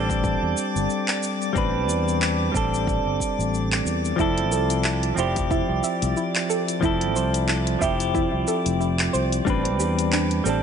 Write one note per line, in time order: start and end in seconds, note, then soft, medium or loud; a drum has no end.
0.00 0.35 A1 medium
0.00 1.51 G3 medium
0.00 1.52 C4 medium
0.00 1.53 D4 medium
0.00 1.54 A4 medium
0.00 10.63 D5 medium
0.00 10.63 D6 medium
0.10 kick loud
0.10 shaker soft
0.24 kick loud
0.24 shaker soft
0.43 0.53 E2 medium
0.57 shaker medium
0.76 0.86 G1 medium
0.76 shaker soft
0.90 shaker soft
1.08 clap medium
1.23 shaker medium
1.42 shaker soft
1.53 1.89 A1 medium
1.53 2.50 G3 medium
1.53 2.51 C4 medium
1.53 2.51 D4 medium
1.53 kick loud
1.53 shaker soft
1.58 2.52 B4 medium
1.89 2.49 E2 medium
1.89 shaker medium
2.08 shaker soft
2.22 clap medium
2.22 shaker soft
2.52 2.99 A1 medium
2.52 4.15 G3 medium
2.52 4.16 C4 medium
2.52 4.16 D4 medium
2.52 kick loud
2.52 shaker medium
2.57 4.17 A4 medium
2.74 shaker soft
2.87 kick loud
2.87 shaker soft
3.06 3.16 G1 medium
3.20 kick medium
3.20 shaker medium
3.39 3.80 A1 medium
3.39 shaker soft
3.54 shaker soft
3.72 clap medium
3.86 4.12 E2 medium
3.86 shaker medium
4.05 shaker soft
4.16 4.52 F1 medium
4.16 5.13 F3 medium
4.16 5.14 C4 medium
4.16 4.39 E4 loud
4.16 5.15 E4 medium
4.16 kick loud
4.16 shaker soft
4.21 5.16 A4 medium
4.38 closed hi-hat soft
4.52 5.12 C2 medium
4.52 4.82 A4 medium
4.52 shaker medium
4.70 closed hi-hat soft
4.70 shaker soft
4.84 5.17 E4 loud
4.84 clap medium
4.84 shaker soft
5.03 closed hi-hat soft
5.15 5.62 F1 medium
5.15 6.78 F3 medium
5.15 6.79 C4 medium
5.15 6.80 E4 medium
5.15 5.50 C5 medium
5.15 shaker medium
5.19 6.80 G4 medium
5.36 kick loud
5.36 closed hi-hat soft
5.36 shaker soft
5.51 5.71 E4 loud
5.51 kick loud
5.51 shaker soft
5.70 5.80 C2 medium
5.84 6.16 E5 medium
5.84 shaker medium
6.02 6.13 C2 loud
6.02 closed hi-hat soft
6.02 shaker soft
6.17 6.47 E4 medium
6.17 shaker soft
6.35 clap medium
6.35 closed hi-hat soft
6.50 6.80 A4 loud
6.50 shaker medium
6.68 closed hi-hat soft
6.68 shaker soft
6.81 7.16 F1 medium
6.81 7.77 F3 medium
6.81 7.78 C4 medium
6.81 7.03 E4 loud
6.81 7.79 E4 medium
6.81 kick loud
6.81 shaker soft
6.85 7.80 A4 medium
7.01 closed hi-hat soft
7.16 7.76 C2 medium
7.16 7.46 C5 loud
7.16 shaker medium
7.34 closed hi-hat medium
7.34 shaker soft
7.48 7.80 E4 loud
7.48 clap medium
7.48 shaker soft
7.67 closed hi-hat soft
7.79 8.26 F1 loud
7.79 9.42 F3 medium
7.79 9.43 C4 medium
7.79 9.43 E4 medium
7.79 8.13 E5 medium
7.79 kick loud
7.79 shaker medium
7.83 9.44 G4 medium
8.00 closed hi-hat medium
8.00 shaker soft
8.14 8.35 E4 loud
8.14 kick loud
8.14 shaker soft
8.33 8.44 C2 medium
8.48 8.68 A4 medium
8.48 shaker medium
8.66 9.08 F1 medium
8.66 closed hi-hat medium
8.66 shaker soft
8.80 9.01 E4 medium
8.80 shaker soft
8.99 clap medium
8.99 closed hi-hat soft
9.13 9.40 C2 medium
9.13 9.45 C5 loud
9.13 shaker medium
9.32 closed hi-hat medium
9.32 shaker soft
9.45 9.80 A1 loud
9.45 10.41 G3 medium
9.45 10.42 C4 medium
9.45 9.66 D4 loud
9.45 10.43 D4 medium
9.45 kick loud
9.45 shaker soft
9.50 10.44 B4 medium
9.65 closed hi-hat soft
9.80 10.40 E2 medium
9.80 10.10 G4 medium
9.80 shaker medium
9.99 closed hi-hat medium
9.99 shaker soft
10.12 10.44 D4 loud
10.12 clap medium
10.12 shaker soft
10.31 closed hi-hat soft
10.44 10.63 A1 medium
10.44 10.63 G3 medium
10.44 10.63 C4 medium
10.44 10.63 D4 medium
10.44 10.63 A4 medium
10.44 shaker medium
10.49 10.63 A4 medium